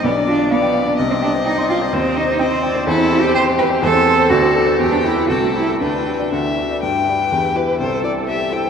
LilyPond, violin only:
\new Staff \with { instrumentName = "Violin" } { \time 2/4 \key c \minor \tempo 4 = 125 d''4 d''4 | ees''2 | c''4 c''4 | \key g \major a'4 g'4 |
c''4 a'4 | g'4 a'4 | b'4 e''4 | g''4. b'8 |
c''8 d''8 e''8 g''8 | }